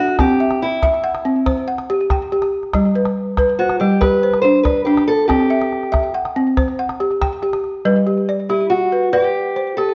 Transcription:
0.00 0.19 D4 medium
0.00 0.17 F#4 medium
0.00 0.19 D5 medium
0.08 calabash click soft
0.19 0.61 C4 medium
0.19 0.59 G4 medium
0.19 calabash thump medium
0.19 calabash click medium
0.40 0.82 E5 medium
0.51 calabash click soft
0.62 0.82 E4 medium
0.83 1.64 E4 medium
0.83 1.25 E5 medium
0.83 calabash thump medium
0.83 calabash click medium
0.93 calabash click soft
1.04 1.67 F#5 medium
1.15 calabash click soft
1.25 1.68 C4 medium
1.46 2.10 C5 medium
1.46 calabash thump medium
1.46 calabash click medium
1.68 2.32 F#5 medium
1.78 calabash click soft
1.90 2.31 G4 medium
2.10 2.74 G5 medium
2.10 calabash thump medium
2.10 calabash click medium
2.32 2.74 G4 medium
2.42 calabash click soft
2.63 calabash click soft
2.74 3.17 G3 medium
2.74 calabash thump medium
2.74 calabash click medium
2.96 3.37 B4 medium
3.06 calabash click soft
3.37 3.81 B4 medium
3.37 calabash thump medium
3.37 calabash click medium
3.48 calabash click soft
3.59 3.79 F#4 medium
3.59 4.22 C5 medium
3.70 calabash click soft
3.80 4.23 G3 medium
3.80 4.02 G4 medium
4.01 4.66 G4 medium
4.01 4.41 B4 medium
4.01 calabash thump medium
4.01 calabash click medium
4.23 4.87 C5 medium
4.34 calabash click soft
4.42 4.85 D4 medium
4.42 4.63 C5 medium
4.63 4.84 B4 medium
4.63 5.29 D5 medium
4.63 calabash thump medium
4.63 calabash click medium
4.85 5.29 D4 medium
4.85 5.07 G4 medium
4.97 calabash click medium
5.07 5.27 A4 loud
5.19 calabash click soft
5.28 5.72 C4 medium
5.28 6.10 G4 medium
5.28 calabash thump medium
5.28 calabash click medium
5.40 calabash click soft
5.50 5.91 E5 medium
5.62 calabash click soft
5.72 calabash click soft
5.83 calabash click soft
5.92 6.35 E5 medium
5.92 calabash thump medium
5.92 calabash click medium
6.14 6.78 F#5 medium
6.25 calabash click soft
6.36 6.79 C4 medium
6.57 7.21 C5 medium
6.57 calabash thump medium
6.57 calabash click medium
6.68 calabash click soft
6.79 7.43 F#5 medium
6.89 calabash click soft
7.00 7.42 G4 medium
7.11 calabash click soft
7.22 7.85 G5 medium
7.22 calabash thump medium
7.22 calabash click medium
7.42 7.85 G4 medium
7.42 calabash click soft
7.53 calabash click soft
7.64 calabash click soft
7.85 8.28 G3 medium
7.85 8.49 B4 medium
8.07 8.49 G4 medium
8.29 8.92 D5 medium
8.49 8.69 E4 medium
8.49 8.92 G4 medium
8.70 9.12 F#4 medium
8.92 9.12 B4 medium
9.13 9.77 G4 medium
9.13 9.56 B4 medium
9.13 9.77 D5 medium
9.56 9.94 C5 medium
9.77 9.94 G4 medium
9.77 9.94 A4 medium

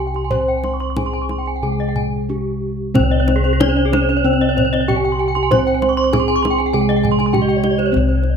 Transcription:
0.00 1.61 C2 medium
0.00 0.31 C3 soft
0.00 0.31 G4 soft
0.07 0.15 G5 soft
0.14 0.23 C6 soft
0.14 kendang slap soft
0.24 0.32 G#5 soft
0.30 1.62 C4 soft
0.30 2.25 C5 medium
0.30 0.97 C5 soft
0.30 0.39 C6 soft
0.30 kendang low soft
0.41 0.48 G#5 soft
0.48 0.56 G5 soft
0.57 0.65 G#5 soft
0.64 0.72 C6 soft
0.64 kendang high soft
0.74 0.81 C#6 soft
0.80 0.89 C6 soft
0.80 kendang slap soft
0.90 0.98 C#6 soft
0.97 1.05 C#4 soft
0.97 1.62 G#4 soft
0.97 1.05 G#5 soft
0.97 kendang high soft
0.97 kendang low soft
1.06 1.14 C6 soft
1.14 1.22 G#5 soft
1.22 1.30 C#6 soft
1.29 1.39 C6 soft
1.29 kendang high soft
1.38 1.46 G5 soft
1.46 1.55 G#5 soft
1.46 kendang slap soft
1.56 1.63 G5 soft
1.63 3.56 C3 medium
1.63 2.95 G#3 soft
1.63 2.29 G#4 soft
1.63 1.71 G#5 soft
1.72 1.80 G5 soft
1.79 1.88 D#5 soft
1.79 kendang slap soft
1.89 1.96 G5 soft
1.96 2.04 G#5 soft
1.96 kendang low soft
2.29 2.37 C#4 soft
2.29 2.95 G4 soft
2.94 4.23 C3 medium
2.94 4.84 C4 medium
2.94 3.60 C4 medium
2.94 3.03 C5 medium
2.94 kendang high medium
2.94 kendang low medium
2.99 6.72 C2 medium
3.03 3.11 C#5 medium
3.11 3.19 D#5 medium
3.20 3.28 C#5 medium
3.28 3.36 C5 medium
3.28 kendang high soft
3.36 3.44 G#4 medium
3.44 3.52 C5 medium
3.44 kendang slap soft
3.53 3.61 G#4 medium
3.60 3.68 C#4 soft
3.60 4.25 C#4 medium
3.60 3.68 C#5 medium
3.60 kendang high medium
3.60 kendang low medium
3.69 3.77 C5 medium
3.77 3.85 C#5 medium
3.85 3.93 G#4 medium
3.93 4.01 C5 medium
3.93 kendang high medium
4.02 4.09 C#5 soft
4.09 4.17 C5 medium
4.09 kendang slap soft
4.17 4.25 C#5 medium
4.24 5.50 C3 medium
4.24 4.88 C4 medium
4.24 4.33 C5 medium
4.33 4.41 C#5 medium
4.41 4.49 D#5 medium
4.41 kendang slap soft
4.49 4.57 C#5 medium
4.57 4.65 C5 medium
4.57 kendang low medium
4.65 4.73 C#5 medium
4.73 4.81 D#5 medium
4.73 kendang slap soft
4.81 4.88 C#5 medium
4.88 4.96 C#4 soft
4.88 5.51 G4 medium
4.88 4.96 G5 medium
4.88 kendang low medium
4.96 5.04 G#5 medium
5.05 5.12 G5 medium
5.12 5.20 C6 medium
5.20 5.27 G#5 medium
5.28 5.36 G5 medium
5.35 5.43 C6 medium
5.35 kendang slap soft
5.43 5.51 G#5 medium
5.51 6.73 C4 medium
5.51 7.30 C5 medium
5.51 6.13 C5 medium
5.51 5.59 C6 medium
5.51 kendang high medium
5.51 kendang low medium
5.59 5.66 G#5 medium
5.67 5.74 G5 medium
5.67 kendang slap soft
5.75 5.82 G#5 medium
5.82 5.90 C6 medium
5.82 kendang high medium
5.89 5.97 C#6 medium
5.97 6.05 C6 medium
5.97 kendang slap soft
6.04 6.12 C#6 medium
6.12 6.20 C#4 soft
6.12 6.73 G#4 medium
6.12 6.20 G#5 medium
6.12 kendang high medium
6.12 kendang low medium
6.20 6.28 C6 medium
6.28 6.36 G#5 medium
6.28 kendang slap soft
6.36 6.43 C#6 medium
6.43 6.50 C6 medium
6.43 kendang high medium
6.50 6.58 G5 medium
6.58 6.66 G#5 medium
6.58 kendang slap soft
6.66 6.74 G5 medium
6.73 8.37 C3 medium
6.73 7.93 G#3 medium
6.73 7.34 G#4 medium
6.73 6.81 G#5 medium
6.81 6.89 G5 medium
6.89 6.96 D#5 medium
6.89 kendang slap soft
6.96 7.04 G5 medium
7.04 7.11 G#5 medium
7.04 kendang low medium
7.12 7.19 C6 medium
7.19 7.26 G#5 medium
7.19 kendang slap soft
7.26 7.34 C6 medium
7.33 7.41 C#4 soft
7.33 7.93 G4 medium
7.33 7.41 G5 medium
7.33 kendang low medium
7.42 7.49 D#5 medium
7.49 7.56 G5 medium
7.49 kendang slap soft
7.56 7.63 C#5 soft
7.64 7.71 D#5 medium
7.64 kendang high soft
7.71 7.78 C#5 medium
7.78 7.86 C5 medium
7.78 kendang slap soft
7.86 7.93 C#5 medium
7.92 8.37 C3 soft
7.92 8.37 C4 soft
7.92 8.37 C4 medium
7.92 8.00 C5 soft
7.92 kendang low soft
7.97 8.37 C2 loud
7.97 8.08 C#5 soft
8.08 8.15 C5 soft
8.08 kendang slap soft
8.15 8.22 C#5 soft
8.23 8.30 C5 soft
8.23 kendang high soft
8.30 8.37 D#5 soft

